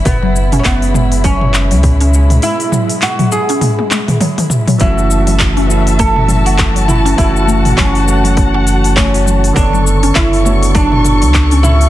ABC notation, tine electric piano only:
X:1
M:4/4
L:1/8
Q:"Swing 16ths" 1/4=101
K:F#m
V:1 name="Tine electric piano"
z8 | z8 | [E,A,CF]3 [E,A,CE]4- [E,A,CE] | [E,A,CF]3 [E,A,CF]4- [E,A,CF] |
[D,B,Ac]3 [B,DFc]4- [B,DFc] |]